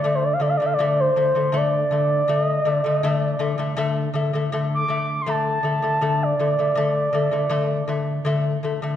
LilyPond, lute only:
\new Staff \with { instrumentName = "Lute" } { \clef bass \time 4/4 \tempo 4 = 80 <d a>8 <d a>16 <d a>16 <d a>8 <d a>16 <d a>16 <d a>8 <d a>8 <d a>8 <d a>16 <d a>16 | <d a>8 <d a>16 <d a>16 <d a>8 <d a>16 <d a>16 <d a>8 <d a>8 <d a>8 <d a>16 <d a>16 | <d a>8 <d a>16 <d a>16 <d a>8 <d a>16 <d a>16 <d a>8 <d a>8 <d a>8 <d a>16 <d a>16 | }